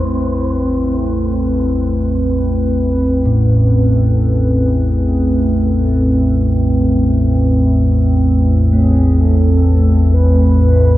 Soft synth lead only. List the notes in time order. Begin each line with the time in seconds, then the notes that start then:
0.03 B4
0.96 A4
1.91 B4
3.75 A4
4.66 G#4
5.55 A4
8.75 G#4
9.20 A4
10.14 B4